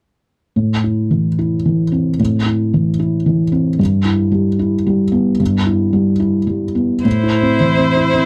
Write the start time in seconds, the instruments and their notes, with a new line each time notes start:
0.56 felt piano A2
0.84 felt piano E4
1.11 felt piano E3
1.39 felt piano E4
1.65 felt piano E3
1.92 felt piano C4
2.19 felt piano A2
2.46 felt piano E4
2.74 felt piano E3
2.99 felt piano E4
3.26 felt piano E3
3.52 felt piano C4
3.79 felt piano G2
4.05 felt piano E4
4.32 felt piano G3
4.59 felt piano E4
4.87 felt piano G3
5.12 felt piano B3
5.40 felt piano G2
5.66 felt piano E4
5.93 felt piano G3
6.20 felt piano E4
6.47 felt piano G3
6.75 felt piano B3
7.05 felt piano A2, viola E4, violin C5
7.23 felt piano E4
7.42 felt piano C4
7.60 felt piano E3
7.78 felt piano C4
7.97 felt piano E4
8.14 felt piano C4